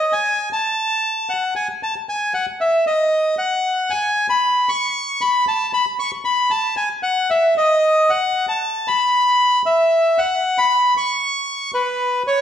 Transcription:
Already playing: D#5
0.13 G#5
0.53 A5
1.30 F#5
1.56 G#5
1.83 A5
2.09 G#5
2.34 F#5
2.61 E5
2.87 D#5
3.38 F#5
3.90 G#5
4.30 B5
4.69 C#6
5.21 B5
5.48 A5
5.74 B5
5.99 C#6
6.25 B5
6.51 A5
6.77 G#5
7.03 F#5
7.30 E5
7.57 D#5
8.10 F#5
8.49 A5
8.88 B5
9.66 E5
10.18 F#5
10.58 B5
10.97 C#6
11.74 B4
12.27 C#5

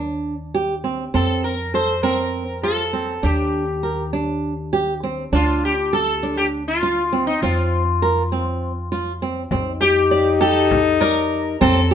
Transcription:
Already playing: D#2 D4
0.54 G4
0.84 C4
1.14 F2 C4 A4
1.44 A#4
1.74 A4 C5
2.03 C4 A#4
2.63 F4 A4
2.93 C4
3.23 D#2 D4 G4
3.83 A#4
4.13 D4
4.73 G4
5.03 C4
5.32 D2 D4 F4
5.65 G4
5.93 A4
6.23 D4
6.37 G4
6.68 F4
6.83 F4
7.13 C4
7.27 D#4
7.42 F2 C4 F4
8.02 A#4
8.32 C4
8.92 F4
9.22 C4
9.51 F2 C4 D#4, frame drum
9.81 G4
10.11 D5
10.41 G4 A4
10.71 frame drum
11.00 A#4 D5
11.60 F2 C4 A4, frame drum

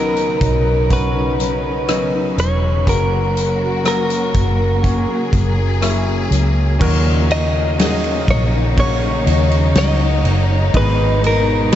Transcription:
Already playing: B1 B2 C#3 D#3 F#3 B3 C#4 D#4 A#4
0.17 closed hi-hat
0.40 B1 F#3 C#4 D#4, kick, closed hi-hat
0.89 B3 C#4 F#4 B4, kick, closed hi-hat
1.14 F#3 C#4 D#4 B4
1.39 F#3 C#4 D#4 B4, closed hi-hat
1.87 B2 D#3 F#3 B3 C#4 D#4 B4, cross-stick, closed hi-hat
2.12 F#3 C#4 D#4 B4
2.37 E1 F#3 C#4 D#4 B4 C#5, closed hi-hat
2.86 F#1 C#3 F#3 A#3 C#4 F#4 A#4, kick, closed hi-hat
3.37 closed hi-hat
3.60 C#4 F#4 A#4
3.84 F#3 A#3 C#4 F#4 A#4, cross-stick, closed hi-hat
3.88 A#4
4.10 closed hi-hat
4.33 F#1 F#3 C#4 F#4 A#4, kick, closed hi-hat
4.58 C#4 F#4 A#4
4.82 A#3 C#4 F#4 G#4, kick, closed hi-hat
5.07 C#4 F#4 A#4
5.32 F#1 F#3 C#4 F#4 A#4, kick, closed hi-hat
5.57 C#4 F#4 A#4
5.81 F#3 A#3 C#4 E4 F#4 A#4, cross-stick, closed hi-hat
6.06 C#4 F#4 A#4
6.31 C#2 F#3 C#4 F#4 A#4, closed hi-hat
6.79 D#2 A#2 C#3 D#3 F#3 A#3 C#4 D#4 F#4 A#4, kick, crash
7.29 F#3 C#4 D#4 A#4 D#5, ride
7.78 D#3 F#3 C#4 D#4 F#4 G#4 A#4, snare, ride
8.04 ride
8.27 A#1 F#3 C#4 D#4 A#4 C#5, kick, ride
8.52 C#4 D#4 A#4
8.76 C#4 D#4 F#4 C#5, kick, ride
9.01 C#4 D#4 A#4
9.26 D#2 F#3 C#4 D#4 A#4, ride
9.51 ride
9.75 C#2 D#3 F#3 C#4 D#4 F#4 A#4 C#5 D#5, snare, ride
10.00 C#4 D#4 A#4
10.24 F#1 F#3 C#4 D#4 A#4, ride
10.48 C#5
10.73 G#1 G#2 B2 D#3 G#3 B3 D#4 G#4 B4 D#5, kick, ride
11.23 G#3 B3 D#4 G#4 A#4, ride
11.71 B3 D#4

